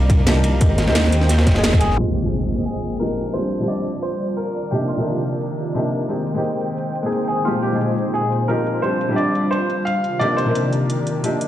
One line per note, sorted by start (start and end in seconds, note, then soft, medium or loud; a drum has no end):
0.00 0.63 C2 medium
0.00 0.26 F3 medium
0.00 0.26 A#3 medium
0.00 0.27 D4 medium
0.00 0.27 D#4 medium
0.00 0.28 G4 loud
0.00 0.26 A#4 loud
0.00 1.95 A#4 medium
0.00 0.59 D5 medium
0.00 0.58 F5 medium
0.10 kick loud
0.10 closed hi-hat medium
0.10 ride medium
0.26 0.59 F3 medium
0.26 0.59 A#3 medium
0.26 0.59 D4 medium
0.26 0.59 D#4 medium
0.26 0.60 G4 loud
0.26 snare loud
0.26 closed hi-hat loud
0.26 ride medium
0.44 closed hi-hat medium
0.44 ride medium
0.60 0.89 G#1 medium
0.60 0.84 G#3 medium
0.60 0.85 A#3 medium
0.60 0.85 C4 medium
0.60 0.85 D#4 medium
0.60 0.86 G4 medium
0.60 1.97 C5 medium
0.60 1.97 G5 medium
0.60 kick loud
0.60 closed hi-hat medium
0.60 ride medium
0.78 snare loud
0.78 closed hi-hat medium
0.78 ride medium
0.86 1.48 D#2 loud
0.86 1.53 G#3 medium
0.86 1.53 A#3 medium
0.86 1.54 C4 medium
0.86 1.55 D#4 medium
0.86 1.55 G4 loud
0.86 snare loud
0.86 ride medium
0.95 snare loud
0.95 closed hi-hat loud
0.95 ride medium
1.04 snare loud
1.04 ride medium
1.12 closed hi-hat medium
1.12 ride medium
1.21 snare soft
1.29 snare loud
1.29 closed hi-hat loud
1.29 ride medium
1.38 snare loud
1.38 ride medium
1.47 1.92 D#1 medium
1.47 kick medium
1.47 snare loud
1.47 closed hi-hat medium
1.47 ride medium
1.54 1.95 G#3 medium
1.54 1.96 A#3 medium
1.54 1.96 C4 medium
1.54 1.97 D#4 medium
1.54 1.97 G#4 medium
1.54 snare loud
1.54 ride medium
1.63 snare loud
1.63 closed hi-hat loud
1.63 ride medium
1.73 kick loud
1.73 snare loud
1.73 ride medium
1.79 1.98 G#4 medium
1.79 closed hi-hat medium
1.79 ride medium
1.90 1.97 A#1 loud
1.90 snare soft
1.96 2.21 A#2 medium
1.96 2.22 F3 medium
1.96 2.22 G#3 medium
1.96 3.34 G#3 medium
1.96 3.34 A#3 medium
1.96 2.22 C4 medium
1.96 2.23 D#4 medium
1.96 2.15 F4 medium
1.96 6.06 F4 medium
1.96 2.23 G4 loud
1.96 3.34 C5 medium
1.96 3.34 D#5 medium
1.96 3.34 G5 medium
1.96 closed hi-hat medium
1.96 crash medium
1.96 impact medium
2.13 2.46 G4 medium
2.23 2.98 A#2 medium
2.23 2.99 F3 medium
2.23 2.99 G#3 medium
2.23 2.99 C4 medium
2.23 3.00 D#4 medium
2.23 3.00 G#4 medium
2.32 closed hi-hat loud
2.49 closed hi-hat medium
2.65 2.98 G#4 medium
2.65 closed hi-hat medium
3.00 3.33 A#2 medium
3.00 3.33 F3 medium
3.00 3.33 G#3 medium
3.00 3.34 C4 medium
3.00 3.34 D#4 medium
3.00 3.34 G4 medium
3.00 3.36 A#4 medium
3.00 closed hi-hat loud
3.18 closed hi-hat medium
3.34 3.59 F3 medium
3.34 3.59 G3 medium
3.34 4.54 G3 medium
3.34 3.59 C4 medium
3.34 3.60 D4 medium
3.34 3.60 G4 medium
3.34 3.70 C5 loud
3.34 4.54 C5 medium
3.34 6.07 D5 medium
3.34 closed hi-hat medium
3.52 closed hi-hat medium
3.60 4.54 F3 medium
3.60 4.54 G3 medium
3.60 4.54 C4 medium
3.60 4.55 D4 medium
3.60 4.55 G4 loud
3.68 4.04 D5 loud
3.68 closed hi-hat medium
3.87 closed hi-hat medium
4.03 4.39 C5 loud
4.03 closed hi-hat medium
4.21 closed hi-hat medium
4.37 4.73 A#4 medium
4.37 closed hi-hat medium
4.55 6.08 C3 medium
4.55 7.44 D#3 medium
4.55 6.08 G4 medium
4.55 7.44 A#4 medium
4.55 closed hi-hat medium
4.71 4.95 C3 medium
4.71 4.96 F3 medium
4.71 4.96 A#3 medium
4.71 4.97 D4 medium
4.71 4.97 D#4 medium
4.71 4.89 G4 medium
4.71 4.97 G4 loud
4.71 closed hi-hat medium
4.88 5.21 F4 medium
4.88 closed hi-hat medium
4.97 5.73 C3 medium
4.97 5.73 F3 medium
4.97 5.73 A#3 medium
4.97 5.74 D4 medium
4.97 5.74 D#4 medium
4.97 5.74 A#4 medium
5.07 closed hi-hat medium
5.24 closed hi-hat medium
5.41 closed hi-hat medium
5.58 closed hi-hat medium
5.74 6.07 C3 medium
5.74 6.07 F3 medium
5.74 6.08 A#3 medium
5.74 6.08 D4 medium
5.74 6.08 D#4 medium
5.74 6.08 G4 medium
5.74 closed hi-hat medium
5.92 closed hi-hat medium
6.09 6.33 G#3 medium
6.09 8.81 G#3 medium
6.09 6.34 A#3 medium
6.09 6.34 C4 medium
6.09 6.34 D#4 medium
6.09 6.34 G4 medium
6.09 10.00 C5 medium
6.09 8.81 G5 medium
6.09 closed hi-hat medium
6.27 closed hi-hat medium
6.34 7.01 G#3 medium
6.34 7.02 A#3 medium
6.34 7.03 C4 medium
6.34 7.03 D#4 medium
6.34 7.04 G4 loud
6.44 closed hi-hat medium
6.61 closed hi-hat medium
6.78 closed hi-hat medium
6.95 closed hi-hat medium
7.03 7.44 G#3 medium
7.03 7.44 A#3 medium
7.03 7.45 C4 medium
7.03 7.45 D#4 medium
7.03 7.46 G#4 medium
7.12 closed hi-hat medium
7.28 7.46 G#4 medium
7.28 closed hi-hat medium
7.45 7.70 A#2 medium
7.45 8.82 A#2 medium
7.45 7.71 F3 medium
7.45 7.71 G#3 medium
7.45 7.71 C4 medium
7.45 8.82 D#4 medium
7.45 7.71 D#4 medium
7.45 7.62 F4 medium
7.45 11.48 F4 medium
7.45 7.71 G4 loud
7.45 closed hi-hat medium
7.62 7.95 G4 medium
7.62 closed hi-hat medium
7.71 8.47 A#2 medium
7.71 8.47 F3 medium
7.71 8.48 G#3 medium
7.71 8.48 C4 medium
7.71 8.48 D#4 medium
7.71 8.49 G#4 medium
7.81 closed hi-hat medium
7.98 closed hi-hat medium
8.14 8.50 G#4 medium
8.14 closed hi-hat medium
8.32 closed hi-hat medium
8.48 8.81 A#2 medium
8.48 8.81 F3 medium
8.48 8.82 G#3 medium
8.48 8.82 C4 medium
8.48 8.82 D#4 medium
8.48 8.82 G4 medium
8.48 8.84 A#4 medium
8.48 closed hi-hat medium
8.67 closed hi-hat medium
8.82 9.07 F3 medium
8.82 9.08 G3 medium
8.82 10.03 G3 medium
8.82 9.08 C4 medium
8.82 10.02 D4 medium
8.82 9.08 D4 medium
8.82 9.08 G4 medium
8.82 9.18 C5 loud
8.82 closed hi-hat medium
9.01 closed hi-hat medium
9.09 10.02 F3 medium
9.09 10.03 G3 medium
9.09 10.03 C4 medium
9.09 10.03 D4 medium
9.09 10.04 G4 medium
9.16 9.52 D5 medium
9.16 closed hi-hat medium
9.35 closed hi-hat medium
9.51 9.87 C5 loud
9.51 closed hi-hat medium
9.70 closed hi-hat medium
9.85 10.21 F5 loud
9.85 closed hi-hat medium
10.04 11.48 C3 medium
10.04 11.48 D#3 medium
10.04 11.48 G4 medium
10.04 11.48 A#4 medium
10.04 11.48 D5 medium
10.04 closed hi-hat medium
10.19 10.44 C3 medium
10.19 10.45 F3 medium
10.19 10.45 A#3 medium
10.19 10.45 D4 medium
10.19 10.45 D#4 medium
10.19 10.45 G4 loud
10.19 10.36 D5 loud
10.19 closed hi-hat medium
10.37 10.69 C5 medium
10.37 closed hi-hat medium
10.46 11.21 C3 medium
10.46 11.22 F3 medium
10.46 11.22 A#3 medium
10.46 11.22 D4 medium
10.46 11.23 D#4 medium
10.46 11.23 A#4 medium
10.55 closed hi-hat medium
10.73 closed hi-hat medium
10.90 closed hi-hat medium
11.07 closed hi-hat medium
11.23 11.48 C3 medium
11.23 11.48 F3 medium
11.23 11.48 A#3 medium
11.23 11.48 D4 medium
11.23 11.48 D#4 medium
11.23 11.48 G4 loud
11.23 closed hi-hat medium
11.41 closed hi-hat medium